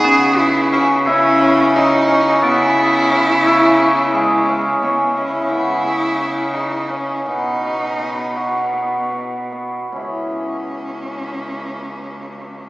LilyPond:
<<
  \new Staff \with { instrumentName = "Cello" } { \time 7/8 \key cis \minor \tempo 4 = 86 gis'8 e'8 e'8 cis'4 dis'4 | e'2~ e'8 gis4 | b8 cis'8 e'4. dis'8 cis'8 | dis'2~ dis'8 r4 |
cis'2.~ cis'8 | }
  \new Staff \with { instrumentName = "Hammered dulcimer" } { \time 7/8 \key cis \minor b8 gis'8 cis'8 e'8 cis'8 gis'8 cis'8 | b8 gis'8 cis'8 e'8 cis'8 gis'8 cis'8 | cis'8 e'8 b8 gis'8 cis'8 gis'8 cis'8 | b8 fis'8 b8 fis'8 b8 fis'8 b8 |
<cis' e' gis' cis''>2.~ <cis' e' gis' cis''>8 | }
  \new Staff \with { instrumentName = "Vibraphone" } { \time 7/8 \key cis \minor cis'2.~ cis'8 | b2. r8 | r2. r8 | r2. r8 |
r2. r8 | }
  \new Staff \with { instrumentName = "Cello" } { \clef bass \time 7/8 \key cis \minor cis2.~ cis8 | cis2.~ cis8 | cis2.~ cis8 | b,2.~ b,8 |
cis,2.~ cis,8 | }
>>